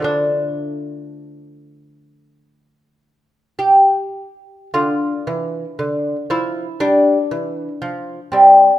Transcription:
X:1
M:4/4
L:1/8
Q:1/4=56
K:Dm
V:1 name="Lute"
D6 G2 | F3 E D3 C |]
V:2 name="Lute" clef=bass
[D,F,A,]8 | D, E, D, F, G, E, F, G, |]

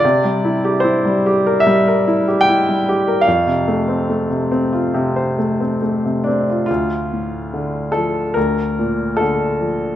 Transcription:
X:1
M:4/4
L:1/16
Q:1/4=73
K:F
V:1 name="Grand piano"
d4 c4 e4 g4 | f12 z2 D2 | [K:Dm] F6 A2 B4 A4 |]
V:2 name="Grand piano"
C, G, E G E G, G B G, B E G E G, G B | F,, C, A, C A, C, C F C, c A, C A, C, C F | [K:Dm] D,,2 A,,2 D,2 F,2 D,,2 B,,2 D,2 F,2 |]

